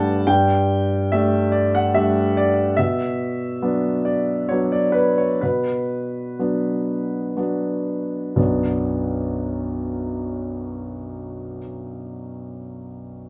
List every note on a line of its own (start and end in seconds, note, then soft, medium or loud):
0.00 0.28 G3 soft
0.00 0.29 A3 soft
0.00 0.29 D4 soft
0.00 0.28 D5 medium
0.00 0.29 F#5 medium
0.00 0.27 G5 medium
0.00 0.27 A5 medium
0.27 1.08 G2 medium
0.27 1.10 G5 medium
1.12 1.91 G3 soft
1.12 1.91 A3 soft
1.12 1.91 D4 soft
1.12 1.53 E5 medium
1.52 1.73 D5 medium
1.75 1.94 F#5 medium
1.94 2.73 G3 soft
1.94 2.73 A3 soft
1.94 2.73 D4 soft
1.94 2.35 E5 medium
2.37 2.77 D5 medium
2.77 3.59 B2 soft
2.77 4.04 E5 medium
3.62 4.45 F#3 soft
3.62 4.45 B3 soft
3.62 4.45 D4 soft
4.05 4.49 D5 medium
4.49 5.38 F#3 soft
4.49 5.38 B3 soft
4.49 5.38 D4 soft
4.49 4.71 C#5 medium
4.72 4.94 D5 medium
4.92 5.16 B4 medium
5.18 5.41 C#5 soft
5.41 6.36 B2 soft
5.41 7.37 B4 soft
6.39 7.33 F#3 soft
6.39 7.33 B3 soft
6.39 7.34 D4 soft
7.37 8.33 F#3 soft
7.37 8.33 B3 soft
7.37 8.33 D4 soft
8.36 11.57 B1 soft
8.36 11.57 F#2 soft
8.36 11.57 F#3 soft
8.36 11.57 B3 soft
8.36 11.57 D4 soft
8.36 11.59 F#4 soft